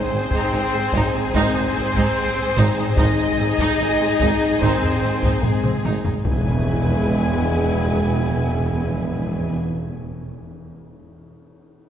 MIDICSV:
0, 0, Header, 1, 14, 480
1, 0, Start_track
1, 0, Key_signature, 4, "major"
1, 0, Tempo, 819896
1, 1747, Time_signature, 4, 2, 24, 8
1, 6961, End_track
2, 0, Start_track
2, 0, Title_t, "Violin section"
2, 0, Program_c, 0, 48
2, 0, Note_on_c, 0, 68, 99
2, 0, Note_on_c, 0, 80, 98
2, 1721, Note_off_c, 0, 80, 0
2, 1722, Note_off_c, 0, 68, 0
2, 1749, Note_on_c, 0, 68, 104
2, 1750, Note_on_c, 0, 80, 106
2, 3527, Note_off_c, 0, 68, 0
2, 3527, Note_off_c, 0, 80, 0
2, 3663, Note_on_c, 0, 80, 88
2, 3664, Note_on_c, 0, 71, 86
2, 5600, Note_off_c, 0, 80, 0
2, 5601, Note_off_c, 0, 71, 0
2, 6961, End_track
3, 0, Start_track
3, 0, Title_t, "Flute section"
3, 0, Program_c, 1, 73
3, 0, Note_on_c, 1, 72, 117
3, 774, Note_off_c, 1, 72, 0
3, 781, Note_on_c, 1, 72, 127
3, 1575, Note_off_c, 1, 72, 0
3, 1744, Note_on_c, 1, 75, 127
3, 2686, Note_off_c, 1, 75, 0
3, 2705, Note_on_c, 1, 72, 112
3, 3184, Note_on_c, 1, 68, 92
3, 3186, Note_off_c, 1, 72, 0
3, 3425, Note_off_c, 1, 68, 0
3, 3664, Note_on_c, 1, 80, 87
3, 5601, Note_off_c, 1, 80, 0
3, 6961, End_track
4, 0, Start_track
4, 0, Title_t, "Violin section"
4, 0, Program_c, 2, 48
4, 0, Note_on_c, 2, 72, 121
4, 772, Note_off_c, 2, 72, 0
4, 790, Note_on_c, 2, 72, 127
4, 1729, Note_off_c, 2, 72, 0
4, 1743, Note_on_c, 2, 75, 127
4, 2686, Note_off_c, 2, 75, 0
4, 2702, Note_on_c, 2, 72, 109
4, 3183, Note_on_c, 2, 68, 89
4, 3184, Note_off_c, 2, 72, 0
4, 3425, Note_off_c, 2, 68, 0
4, 3665, Note_on_c, 2, 80, 85
4, 5602, Note_off_c, 2, 80, 0
4, 6961, End_track
5, 0, Start_track
5, 0, Title_t, "Viola section"
5, 0, Program_c, 3, 48
5, 0, Note_on_c, 3, 68, 93
5, 75, Note_on_c, 3, 60, 68
5, 121, Note_off_c, 3, 60, 0
5, 193, Note_on_c, 3, 63, 109
5, 302, Note_off_c, 3, 63, 0
5, 313, Note_on_c, 3, 63, 74
5, 360, Note_off_c, 3, 63, 0
5, 431, Note_on_c, 3, 60, 80
5, 478, Note_off_c, 3, 60, 0
5, 555, Note_on_c, 3, 63, 107
5, 663, Note_off_c, 3, 63, 0
5, 670, Note_on_c, 3, 63, 85
5, 717, Note_off_c, 3, 63, 0
5, 791, Note_on_c, 3, 63, 124
5, 901, Note_off_c, 3, 63, 0
5, 909, Note_on_c, 3, 63, 81
5, 955, Note_off_c, 3, 63, 0
5, 1029, Note_on_c, 3, 60, 89
5, 1076, Note_off_c, 3, 60, 0
5, 1148, Note_on_c, 3, 63, 110
5, 1259, Note_off_c, 3, 63, 0
5, 1386, Note_on_c, 3, 60, 91
5, 1433, Note_off_c, 3, 60, 0
5, 1506, Note_on_c, 3, 63, 121
5, 1618, Note_off_c, 3, 63, 0
5, 1632, Note_on_c, 3, 63, 94
5, 1679, Note_off_c, 3, 63, 0
5, 1727, Note_off_c, 3, 68, 0
5, 1742, Note_on_c, 3, 63, 115
5, 1744, Note_on_c, 3, 68, 101
5, 1856, Note_off_c, 3, 63, 0
5, 1987, Note_on_c, 3, 60, 84
5, 2034, Note_off_c, 3, 60, 0
5, 2108, Note_on_c, 3, 63, 124
5, 2219, Note_off_c, 3, 63, 0
5, 2226, Note_on_c, 3, 63, 81
5, 2273, Note_off_c, 3, 63, 0
5, 2343, Note_on_c, 3, 60, 76
5, 2390, Note_off_c, 3, 60, 0
5, 2458, Note_on_c, 3, 63, 113
5, 2574, Note_off_c, 3, 63, 0
5, 2583, Note_on_c, 3, 63, 87
5, 2630, Note_off_c, 3, 63, 0
5, 2700, Note_on_c, 3, 63, 109
5, 2815, Note_off_c, 3, 63, 0
5, 2824, Note_on_c, 3, 63, 79
5, 2871, Note_off_c, 3, 63, 0
5, 2942, Note_on_c, 3, 60, 73
5, 2989, Note_off_c, 3, 60, 0
5, 3057, Note_on_c, 3, 63, 98
5, 3173, Note_off_c, 3, 63, 0
5, 3301, Note_on_c, 3, 60, 79
5, 3348, Note_off_c, 3, 60, 0
5, 3424, Note_on_c, 3, 63, 84
5, 3525, Note_off_c, 3, 68, 0
5, 3537, Note_off_c, 3, 63, 0
5, 3546, Note_on_c, 3, 63, 68
5, 3593, Note_off_c, 3, 63, 0
5, 3668, Note_on_c, 3, 64, 82
5, 3669, Note_on_c, 3, 68, 82
5, 5605, Note_off_c, 3, 64, 0
5, 5606, Note_off_c, 3, 68, 0
5, 6961, End_track
6, 0, Start_track
6, 0, Title_t, "French horn section"
6, 0, Program_c, 4, 60
6, 0, Note_on_c, 4, 60, 127
6, 780, Note_off_c, 4, 60, 0
6, 787, Note_on_c, 4, 60, 127
6, 1655, Note_off_c, 4, 60, 0
6, 1755, Note_on_c, 4, 63, 127
6, 2691, Note_off_c, 4, 63, 0
6, 2708, Note_on_c, 4, 60, 127
6, 3178, Note_on_c, 4, 56, 106
6, 3187, Note_off_c, 4, 60, 0
6, 3422, Note_off_c, 4, 56, 0
6, 3659, Note_on_c, 4, 56, 97
6, 5596, Note_off_c, 4, 56, 0
6, 6961, End_track
7, 0, Start_track
7, 0, Title_t, "Trombone section"
7, 0, Program_c, 5, 61
7, 782, Note_on_c, 5, 51, 102
7, 782, Note_on_c, 5, 56, 99
7, 961, Note_off_c, 5, 51, 0
7, 961, Note_off_c, 5, 56, 0
7, 1742, Note_on_c, 5, 51, 97
7, 1742, Note_on_c, 5, 56, 102
7, 1920, Note_off_c, 5, 51, 0
7, 1920, Note_off_c, 5, 56, 0
7, 2710, Note_on_c, 5, 51, 93
7, 2713, Note_on_c, 5, 56, 98
7, 2885, Note_off_c, 5, 51, 0
7, 2886, Note_off_c, 5, 56, 0
7, 3674, Note_on_c, 5, 59, 87
7, 3675, Note_on_c, 5, 52, 88
7, 5611, Note_off_c, 5, 59, 0
7, 5612, Note_off_c, 5, 52, 0
7, 6961, End_track
8, 0, Start_track
8, 0, Title_t, "Cello section"
8, 0, Program_c, 6, 48
8, 67, Note_on_c, 6, 44, 76
8, 114, Note_off_c, 6, 44, 0
8, 179, Note_on_c, 6, 44, 105
8, 226, Note_off_c, 6, 44, 0
8, 306, Note_on_c, 6, 44, 83
8, 352, Note_off_c, 6, 44, 0
8, 430, Note_on_c, 6, 44, 84
8, 477, Note_off_c, 6, 44, 0
8, 548, Note_on_c, 6, 44, 113
8, 594, Note_off_c, 6, 44, 0
8, 668, Note_on_c, 6, 44, 87
8, 715, Note_off_c, 6, 44, 0
8, 789, Note_on_c, 6, 44, 121
8, 836, Note_off_c, 6, 44, 0
8, 906, Note_on_c, 6, 44, 73
8, 953, Note_off_c, 6, 44, 0
8, 1026, Note_on_c, 6, 44, 83
8, 1073, Note_off_c, 6, 44, 0
8, 1149, Note_on_c, 6, 44, 117
8, 1195, Note_off_c, 6, 44, 0
8, 1389, Note_on_c, 6, 44, 83
8, 1436, Note_off_c, 6, 44, 0
8, 1507, Note_on_c, 6, 44, 119
8, 1553, Note_off_c, 6, 44, 0
8, 1627, Note_on_c, 6, 44, 82
8, 1674, Note_off_c, 6, 44, 0
8, 1743, Note_on_c, 6, 44, 120
8, 1790, Note_off_c, 6, 44, 0
8, 1986, Note_on_c, 6, 44, 85
8, 2033, Note_off_c, 6, 44, 0
8, 2104, Note_on_c, 6, 44, 108
8, 2151, Note_off_c, 6, 44, 0
8, 2228, Note_on_c, 6, 44, 88
8, 2275, Note_off_c, 6, 44, 0
8, 2342, Note_on_c, 6, 44, 88
8, 2389, Note_off_c, 6, 44, 0
8, 2466, Note_on_c, 6, 44, 119
8, 2512, Note_off_c, 6, 44, 0
8, 2585, Note_on_c, 6, 44, 84
8, 2631, Note_off_c, 6, 44, 0
8, 2704, Note_on_c, 6, 44, 110
8, 2751, Note_off_c, 6, 44, 0
8, 2825, Note_on_c, 6, 44, 70
8, 2872, Note_off_c, 6, 44, 0
8, 2943, Note_on_c, 6, 44, 72
8, 2990, Note_off_c, 6, 44, 0
8, 3065, Note_on_c, 6, 44, 105
8, 3112, Note_off_c, 6, 44, 0
8, 3304, Note_on_c, 6, 44, 71
8, 3351, Note_off_c, 6, 44, 0
8, 3422, Note_on_c, 6, 44, 93
8, 3468, Note_off_c, 6, 44, 0
8, 3545, Note_on_c, 6, 44, 66
8, 3591, Note_off_c, 6, 44, 0
8, 3660, Note_on_c, 6, 40, 82
8, 5597, Note_off_c, 6, 40, 0
8, 6961, End_track
9, 0, Start_track
9, 0, Title_t, "Timpani"
9, 0, Program_c, 7, 47
9, 3664, Note_on_c, 7, 40, 94
9, 3704, Note_off_c, 7, 40, 0
9, 3704, Note_on_c, 7, 40, 81
9, 3744, Note_off_c, 7, 40, 0
9, 3747, Note_on_c, 7, 40, 91
9, 3785, Note_off_c, 7, 40, 0
9, 3785, Note_on_c, 7, 40, 85
9, 3824, Note_off_c, 7, 40, 0
9, 3824, Note_on_c, 7, 40, 92
9, 3862, Note_off_c, 7, 40, 0
9, 3862, Note_on_c, 7, 40, 81
9, 3902, Note_off_c, 7, 40, 0
9, 3903, Note_on_c, 7, 40, 84
9, 3944, Note_off_c, 7, 40, 0
9, 3945, Note_on_c, 7, 40, 90
9, 3985, Note_off_c, 7, 40, 0
9, 3986, Note_on_c, 7, 40, 96
9, 4026, Note_off_c, 7, 40, 0
9, 4029, Note_on_c, 7, 40, 88
9, 4068, Note_off_c, 7, 40, 0
9, 4068, Note_on_c, 7, 40, 88
9, 4108, Note_off_c, 7, 40, 0
9, 4108, Note_on_c, 7, 40, 75
9, 4147, Note_off_c, 7, 40, 0
9, 4147, Note_on_c, 7, 40, 100
9, 4187, Note_off_c, 7, 40, 0
9, 4190, Note_on_c, 7, 40, 80
9, 4227, Note_off_c, 7, 40, 0
9, 4227, Note_on_c, 7, 40, 97
9, 4266, Note_off_c, 7, 40, 0
9, 4266, Note_on_c, 7, 40, 88
9, 4306, Note_off_c, 7, 40, 0
9, 4306, Note_on_c, 7, 40, 94
9, 4345, Note_off_c, 7, 40, 0
9, 4345, Note_on_c, 7, 40, 85
9, 4384, Note_off_c, 7, 40, 0
9, 4384, Note_on_c, 7, 40, 88
9, 4422, Note_off_c, 7, 40, 0
9, 4422, Note_on_c, 7, 40, 89
9, 4462, Note_off_c, 7, 40, 0
9, 4462, Note_on_c, 7, 40, 91
9, 4502, Note_off_c, 7, 40, 0
9, 4502, Note_on_c, 7, 40, 87
9, 4542, Note_off_c, 7, 40, 0
9, 4544, Note_on_c, 7, 40, 90
9, 4584, Note_off_c, 7, 40, 0
9, 4584, Note_on_c, 7, 40, 86
9, 4623, Note_off_c, 7, 40, 0
9, 4623, Note_on_c, 7, 40, 97
9, 4663, Note_off_c, 7, 40, 0
9, 4663, Note_on_c, 7, 40, 82
9, 4703, Note_off_c, 7, 40, 0
9, 4703, Note_on_c, 7, 40, 93
9, 4743, Note_off_c, 7, 40, 0
9, 4743, Note_on_c, 7, 40, 91
9, 4780, Note_off_c, 7, 40, 0
9, 4780, Note_on_c, 7, 40, 88
9, 4816, Note_off_c, 7, 40, 0
9, 4816, Note_on_c, 7, 40, 95
9, 4856, Note_off_c, 7, 40, 0
9, 4856, Note_on_c, 7, 40, 95
9, 4897, Note_off_c, 7, 40, 0
9, 4899, Note_on_c, 7, 40, 88
9, 4939, Note_off_c, 7, 40, 0
9, 4940, Note_on_c, 7, 40, 97
9, 4981, Note_off_c, 7, 40, 0
9, 4982, Note_on_c, 7, 40, 84
9, 5022, Note_off_c, 7, 40, 0
9, 5022, Note_on_c, 7, 40, 88
9, 5061, Note_off_c, 7, 40, 0
9, 5061, Note_on_c, 7, 40, 80
9, 5101, Note_off_c, 7, 40, 0
9, 5101, Note_on_c, 7, 40, 97
9, 5141, Note_off_c, 7, 40, 0
9, 5141, Note_on_c, 7, 40, 78
9, 5181, Note_off_c, 7, 40, 0
9, 5182, Note_on_c, 7, 40, 95
9, 5221, Note_off_c, 7, 40, 0
9, 5221, Note_on_c, 7, 40, 81
9, 5261, Note_off_c, 7, 40, 0
9, 5261, Note_on_c, 7, 40, 94
9, 5299, Note_off_c, 7, 40, 0
9, 5299, Note_on_c, 7, 40, 89
9, 5338, Note_off_c, 7, 40, 0
9, 5338, Note_on_c, 7, 40, 91
9, 5376, Note_off_c, 7, 40, 0
9, 5376, Note_on_c, 7, 40, 93
9, 5416, Note_off_c, 7, 40, 0
9, 5419, Note_on_c, 7, 40, 99
9, 5458, Note_off_c, 7, 40, 0
9, 5458, Note_on_c, 7, 40, 91
9, 5498, Note_off_c, 7, 40, 0
9, 5504, Note_on_c, 7, 40, 93
9, 5544, Note_off_c, 7, 40, 0
9, 5548, Note_on_c, 7, 40, 85
9, 5586, Note_off_c, 7, 40, 0
9, 5586, Note_on_c, 7, 40, 91
9, 5626, Note_off_c, 7, 40, 0
9, 6961, End_track
10, 0, Start_track
10, 0, Title_t, "Double bass section"
10, 0, Program_c, 8, 48
10, 64, Note_on_c, 8, 32, 69
10, 111, Note_off_c, 8, 32, 0
10, 304, Note_on_c, 8, 32, 79
10, 351, Note_off_c, 8, 32, 0
10, 548, Note_on_c, 8, 32, 120
10, 595, Note_off_c, 8, 32, 0
10, 784, Note_on_c, 8, 32, 108
10, 831, Note_off_c, 8, 32, 0
10, 1027, Note_on_c, 8, 32, 79
10, 1073, Note_off_c, 8, 32, 0
10, 1505, Note_on_c, 8, 32, 126
10, 1552, Note_off_c, 8, 32, 0
10, 1742, Note_on_c, 8, 32, 125
10, 1789, Note_off_c, 8, 32, 0
10, 1981, Note_on_c, 8, 32, 80
10, 2028, Note_off_c, 8, 32, 0
10, 2219, Note_on_c, 8, 32, 81
10, 2266, Note_off_c, 8, 32, 0
10, 2460, Note_on_c, 8, 32, 116
10, 2507, Note_off_c, 8, 32, 0
10, 2702, Note_on_c, 8, 32, 110
10, 2749, Note_off_c, 8, 32, 0
10, 2941, Note_on_c, 8, 32, 73
10, 2988, Note_off_c, 8, 32, 0
10, 3423, Note_on_c, 8, 32, 99
10, 3469, Note_off_c, 8, 32, 0
10, 3664, Note_on_c, 8, 28, 95
10, 5601, Note_off_c, 8, 28, 0
10, 6961, End_track
11, 0, Start_track
11, 0, Title_t, "Tuba"
11, 0, Program_c, 10, 58
11, 71, Note_on_c, 10, 32, 80
11, 118, Note_off_c, 10, 32, 0
11, 307, Note_on_c, 10, 32, 79
11, 355, Note_off_c, 10, 32, 0
11, 540, Note_on_c, 10, 32, 104
11, 589, Note_off_c, 10, 32, 0
11, 788, Note_on_c, 10, 32, 112
11, 836, Note_off_c, 10, 32, 0
11, 1027, Note_on_c, 10, 32, 77
11, 1075, Note_off_c, 10, 32, 0
11, 1507, Note_on_c, 10, 32, 114
11, 1555, Note_off_c, 10, 32, 0
11, 1745, Note_on_c, 10, 32, 112
11, 1794, Note_off_c, 10, 32, 0
11, 1994, Note_on_c, 10, 32, 87
11, 2041, Note_off_c, 10, 32, 0
11, 2229, Note_on_c, 10, 32, 83
11, 2277, Note_off_c, 10, 32, 0
11, 2467, Note_on_c, 10, 32, 110
11, 2515, Note_off_c, 10, 32, 0
11, 2709, Note_on_c, 10, 32, 105
11, 2757, Note_off_c, 10, 32, 0
11, 2952, Note_on_c, 10, 32, 73
11, 2999, Note_off_c, 10, 32, 0
11, 3432, Note_on_c, 10, 32, 87
11, 3479, Note_off_c, 10, 32, 0
11, 3671, Note_on_c, 10, 28, 92
11, 5608, Note_off_c, 10, 28, 0
11, 6961, End_track
12, 0, Start_track
12, 0, Title_t, "Impact"
12, 0, Program_c, 11, 103
12, 3665, Note_on_c, 11, 60, 82
12, 5626, Note_off_c, 11, 60, 0
12, 6961, End_track
13, 0, Start_track
13, 0, Title_t, "Taiko and cinematic ensemble drums"
13, 181, Note_on_c, 9, 41, 87
13, 240, Note_off_c, 9, 41, 0
13, 540, Note_on_c, 9, 41, 90
13, 599, Note_off_c, 9, 41, 0
13, 783, Note_on_c, 9, 41, 86
13, 842, Note_off_c, 9, 41, 0
13, 901, Note_on_c, 9, 43, 64
13, 959, Note_off_c, 9, 43, 0
13, 1141, Note_on_c, 9, 41, 92
13, 1200, Note_off_c, 9, 41, 0
13, 1739, Note_on_c, 9, 41, 109
13, 1797, Note_off_c, 9, 41, 0
13, 2098, Note_on_c, 9, 41, 89
13, 2157, Note_off_c, 9, 41, 0
13, 2458, Note_on_c, 9, 41, 92
13, 2517, Note_off_c, 9, 41, 0
13, 2704, Note_on_c, 9, 41, 88
13, 2762, Note_off_c, 9, 41, 0
13, 2823, Note_on_c, 9, 43, 65
13, 2882, Note_off_c, 9, 43, 0
13, 3059, Note_on_c, 9, 41, 98
13, 3117, Note_off_c, 9, 41, 0
13, 3179, Note_on_c, 9, 45, 99
13, 3237, Note_off_c, 9, 45, 0
13, 3301, Note_on_c, 9, 47, 96
13, 3360, Note_off_c, 9, 47, 0
13, 3424, Note_on_c, 9, 48, 102
13, 3482, Note_off_c, 9, 48, 0
13, 3540, Note_on_c, 9, 43, 112
13, 3598, Note_off_c, 9, 43, 0
13, 3658, Note_on_c, 9, 41, 100
13, 3717, Note_off_c, 9, 41, 0
13, 6961, End_track
14, 0, Start_track
14, 0, Title_t, "Tam-tam"
14, 3666, Note_on_c, 9, 52, 64
14, 3724, Note_off_c, 9, 52, 0
14, 6961, End_track
0, 0, End_of_file